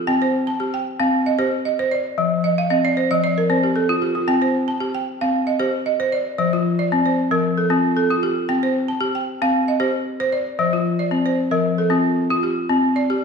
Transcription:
0.00 0.21 G4 medium
0.07 0.34 C4 medium
0.07 0.48 G5 medium
0.22 0.60 C5 medium
0.47 0.86 A5 medium
0.60 0.86 G4 medium
0.74 1.13 G5 medium
1.00 1.26 C4 medium
1.00 1.39 F5 medium
1.26 1.64 D#5 medium
1.39 1.65 G4 medium
1.39 1.78 C5 medium
1.65 2.06 D#5 medium
1.79 2.06 C5 medium
1.91 2.32 D5 medium
2.18 2.44 F3 medium
2.44 2.69 D#5 medium
2.58 2.83 F5 medium
2.70 2.97 C4 medium
2.70 2.95 D#5 medium
2.85 3.09 D5 medium
2.97 3.22 C5 medium
3.11 3.37 F3 medium
3.11 3.35 D#5 medium
3.24 3.48 D5 medium
3.38 3.62 A#4 medium
3.50 3.76 C4 medium
3.50 3.74 C5 medium
3.63 3.88 G4 medium
3.76 4.00 A4 medium
3.89 4.14 F4 medium
4.02 4.27 G4 medium
4.15 4.40 F4 medium
4.28 4.54 C4 medium
4.28 4.68 G5 medium
4.42 4.81 C5 medium
4.68 5.07 A5 medium
4.80 5.07 G4 medium
4.95 5.33 G5 medium
5.21 5.48 C4 medium
5.21 5.60 F5 medium
5.47 5.85 D#5 medium
5.59 5.86 G4 medium
5.59 5.99 C5 medium
5.86 6.26 D#5 medium
6.00 6.26 C5 medium
6.12 6.53 D5 medium
6.38 6.65 F3 medium
6.38 6.79 C5 medium
6.53 6.92 F4 medium
6.79 7.18 D5 medium
6.92 7.18 C4 medium
7.06 7.44 C5 medium
7.31 7.58 F3 medium
7.31 7.70 A#4 medium
7.58 7.95 A4 medium
7.70 7.96 C4 medium
7.70 8.09 F4 medium
7.97 8.37 A4 medium
8.11 8.37 F4 medium
8.23 8.63 G4 medium
8.49 8.75 C4 medium
8.49 8.89 G5 medium
8.63 9.02 C5 medium
8.88 9.27 A5 medium
9.01 9.27 G4 medium
9.15 9.54 G5 medium
9.42 9.68 C4 medium
9.42 9.80 F5 medium
9.68 10.07 D#5 medium
9.80 10.06 G4 medium
9.80 10.19 C5 medium
10.20 10.47 C5 medium
10.32 10.73 D5 medium
10.59 10.85 F3 medium
10.59 10.99 C5 medium
10.73 11.12 F4 medium
10.99 11.38 D5 medium
11.11 11.38 C4 medium
11.26 11.64 C5 medium
11.51 11.78 F3 medium
11.51 11.90 A#4 medium
11.78 12.17 A4 medium
11.90 12.17 C4 medium
11.90 12.29 F4 medium
12.30 12.57 F4 medium
12.43 12.84 G4 medium
12.69 12.96 C4 medium
12.96 13.24 D5 medium
13.10 13.24 G4 medium

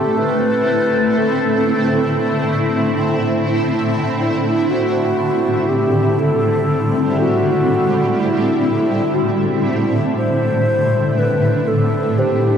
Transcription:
0.00 12.58 A2 medium
0.00 12.58 D3 medium
0.00 4.17 A3 medium
0.00 4.28 A3 medium
0.00 12.58 C4 medium
0.00 12.58 E4 medium
0.00 0.19 G4 medium
0.00 4.28 A4 medium
0.00 4.19 G5 medium
0.00 1.49 A5 medium
0.18 1.19 B4 medium
1.17 3.18 A4 medium
4.20 4.72 E4 medium
4.34 11.87 G3 medium
4.70 5.70 F#4 medium
5.69 6.21 G4 medium
6.19 7.19 A4 medium
7.20 8.20 F#4 loud
8.19 9.68 E4 medium
9.14 11.34 F#4 soft
10.18 11.20 C5 loud
11.19 11.69 B4 medium
11.56 12.58 A3 medium
11.68 12.20 A4 medium
12.18 12.58 G4 medium
12.18 12.58 C5 medium

